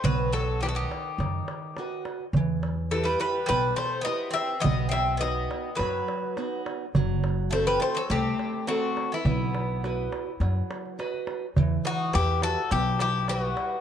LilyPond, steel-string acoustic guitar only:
\new Staff \with { instrumentName = "Steel-string acoustic guitar" } { \time 4/4 \key e \minor \tempo 4 = 104 b4 <b' dis'' fis''>4 dis4 <fis' b' dis''>4 | e4 <e' g' b'>4 b,4 <e' g' b'>4 | b,4 <b dis' fis'>4 fis4 <b dis' fis'>4 | fis4 <c' fis' a'>4 a4 <c' fis' a'>4 |
b4 <fis' b' dis''>4 fis4 <fis' b' dis''>4 | e4 <e' g' b'>4 b,4 <g e' b'>4 | }